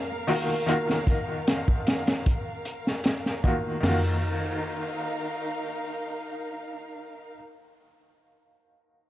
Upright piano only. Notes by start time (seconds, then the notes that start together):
Already playing: D#3 A#3 F4 F#4
0.27 D#3 A#3 F4 F#4
0.66 D#3 A#3 F4
0.70 F#4
3.44 D#3 A#3 F4 F#4
3.80 D#3 A#3
3.85 F4 F#4